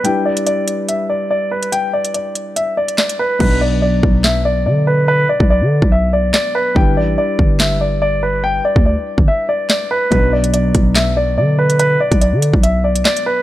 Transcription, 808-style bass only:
\new Staff \with { instrumentName = "808-style bass" } { \clef bass \time 4/4 \key b \minor \tempo 4 = 143 r1 | r1 | b,,4. b,,4. d4~ | d8 r16 b,,8 d8 b,,4~ b,,16 r4 |
g,,8 a,,8 r8 g,,2~ g,,8~ | g,,8 r16 d,8 r8 g,,16 r2 | b,,4. b,,4. d4~ | d8 r16 b,,8 d8 b,,4~ b,,16 r4 | }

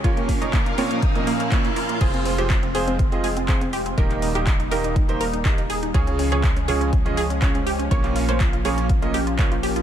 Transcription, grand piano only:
\new Staff \with { instrumentName = "Grand piano" } { \time 4/4 \key f \minor \tempo 4 = 122 <bes, des' f' bes' des''>8. <bes, des' f' bes' des''>16 r8 <bes, des' f' bes' des''>8 r16 <bes, des' f' bes' ees''>16 r8 <bes, des' f' bes' des''>16 r8. | <f c' f' aes' c''>8. <f c' f' aes' c''>16 r8 <f c' f' aes' c''>8 r16 <f c' f' aes' ees''>16 r8 <f c' f' aes' c''>16 r8. | <ees bes ees' g' bes'>8. <ees bes ees' g' bes'>16 r8 <ees bes ees' g' bes'>8 r16 <ees bes ees' g' c''>16 r8 <ees bes ees' g' bes'>16 r8. | <des des' f' aes' des''>8. <des des' f' aes' des''>16 r8 <des des' f' aes' des''>8 r16 <des des' f' aes' ees''>16 r8 <des des' f' aes' des''>16 r8. |
<bes, des' f' bes' des''>8. <bes, des' f' bes' des''>16 r8 <bes, des' f' bes' des''>8 r16 <bes, des' f' bes' ees''>16 r8 <bes, des' f' bes' des''>16 r8. | }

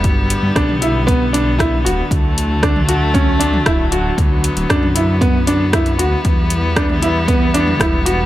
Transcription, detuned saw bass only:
\new Staff \with { instrumentName = "Detuned saw bass" } { \clef bass \time 4/4 \key b \minor \tempo 4 = 116 g,,8 r16 g,16 b,,2~ b,,8 d,,16 r16 | d,2~ d,8. r16 d,,8. r16 | d,8 r16 d,,16 fis,2~ fis,8 d,16 r16 | e,2~ e,8. r16 e,,4 | }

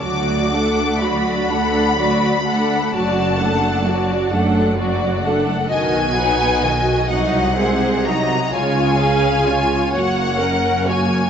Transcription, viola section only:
\new Staff \with { instrumentName = "Viola section" } { \time 6/8 \key d \major \tempo 4. = 43 <fis fis'>8 <a d'>8 <fis fis'>8 <a d'>8 <fis fis'>8 <a d'>8 | <fis fis'>8 <a d'>8 <fis fis'>8 <a d'>8 <fis fis'>8 <a d'>8 | \key fis \major <dis fis'>8 <fis dis'>8 <dis fis'>8 <fis dis'>8 <gis bis>8 <fis dis'>8 | <gis eis'>8 <cis' gis'>8 <gis eis'>8 <ais fis'>8 <cis' ais'>8 <ais fis'>8 | }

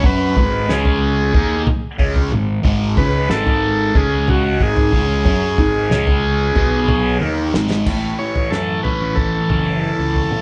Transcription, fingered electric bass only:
\new Staff \with { instrumentName = "Fingered electric bass" } { \clef bass \time 4/4 \key a \lydian \tempo 4 = 92 fis,8 gis,,8 cis,4 dis,8 r8 cis,8 gis,,8 | gis,,8 cis,8 gis,,4 cis,4 gis,,8 cis,8 | fis,8 gis,,8 cis,4 b,,4 dis,8 gis,,8 | a,,8 r8 fis,8 r16 a,,8. fis,,8. cis,8 r16 | }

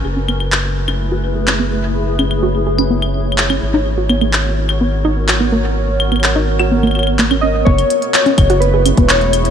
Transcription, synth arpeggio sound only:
\new Staff \with { instrumentName = "Synth arpeggio sound" } { \time 4/4 \key fis \dorian \tempo 4 = 126 gis'16 cis'16 b16 r4 cis'16 r16 fis'16 r16 gis'16 cis'16 b16 r8 | r8 cis'16 r16 fis'16 r16 gis'16 cis'16 b16 r4 cis'16 r16 dis'16 | r16 fis'16 b16 ais16 r4 b16 r16 dis'16 r16 fis'16 b16 ais16 r16 | r8. b16 r16 dis'16 r16 fis'16 b16 ais16 r8 ais16 cis'16 cis'16 r16 |
b16 r4 cis'16 r16 fis'16 r16 gis'16 cis'16 b16 r4 | }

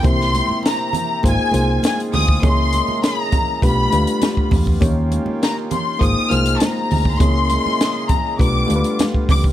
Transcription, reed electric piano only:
\new Staff \with { instrumentName = "Reed electric piano" } { \time 4/4 \key aes \major \tempo 4 = 100 <bes c' e' g' c''>4 r4 <bes ees' f' aes' c''>8 <bes ees' f' aes' c''>4 r8 | <bes des' fes' aes' des''>4 r4 <a d' f' g' b'>8 <a d' f' g' b'>4 r8 | <bes des' ees' g' des''>4 r4 <bes ees' f' aes' c''>8 <bes ees' f' aes' c''>4 r8 | <bes des' fes' aes' des''>4 r4 <a d' f' g' b'>8 <a d' f' g' a' b'>4 r8 | }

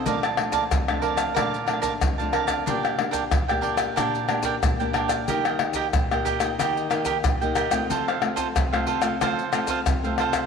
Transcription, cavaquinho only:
\new Staff \with { instrumentName = "Cavaquinho" } { \time 4/4 \key bes \major \tempo 4 = 92 <bes' d'' f'' a''>16 <d'' f'' a''>8 <bes' d'' f'' a''>16 r16 <d'' f'' a''>16 <bes' d'' f'' a''>16 <d'' f'' a''>16 <bes' d'' f'' a''>8 <bes' d'' f'' a''>16 <bes' d'' f'' a''>16 r16 <d'' f'' a''>16 <bes' d'' f'' a''>16 <d'' f'' a''>16 | <d' bes' d'' g''>16 <bes' d'' g''>8 <d' bes' d'' g''>16 r16 <bes' d'' g''>16 <d' bes' d'' g''>16 <bes' d'' g''>16 <d' bes' d'' g''>8 <d' bes' d'' g''>16 <d' bes' d'' g''>16 r16 <bes' d'' g''>16 <d' bes' d'' g''>16 <bes' d'' g''>16 | <g' bes' ees'' g''>16 <bes' ees'' g''>8 <g' bes' ees'' g''>16 r16 <bes' ees'' g''>16 <g' bes' ees'' g''>16 <bes' ees'' g''>16 <g' bes' ees'' g''>8 <g' bes' ees'' g''>16 <g' bes' ees'' g''>16 r16 <bes' ees'' g''>16 <g' bes' ees'' g''>16 <bes' ees'' g''>16 | <f' a' c'' f''>16 <a' c'' f''>8 <f' a' c'' f''>16 r16 <a' c'' f''>16 <f' a' c'' f''>16 <a' c'' f''>16 <f' a' c'' f''>8 <f' a' c'' f''>16 <f' a' c'' f''>16 r16 <a' c'' f''>16 <f' a' c'' f''>16 <a' c'' f''>16 | }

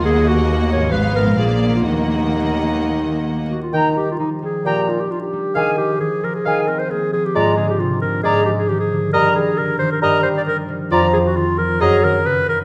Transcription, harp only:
\new Staff \with { instrumentName = "Harp" } { \clef bass \time 4/4 \key ees \minor \tempo 4 = 134 << { <ees ges ees' bes'>2 <aes, f f' ces''>4 <bes, f d' bes'>4 | <ees ges ees' bes'>1~ | \key ees \major <ees ges ees' bes'>1 | r1 |
r1 | r1 | \key ees \minor r1 | } \\ { r1 | r1 | ees8 g8 f8 g8 ees8 ees'8 d'8 g8 | ees8 f8 ees8 f8 ees8 c'8 bes8 f8 |
aes,8 d8 c8 d8 aes,8 f8 ees8 d8 | g,8 ees8 d8 ees8 g,8 g8 f8 ees8 | f,8 f8 ees8 f8 ges,8 ees8 des8 ees8 | } >> }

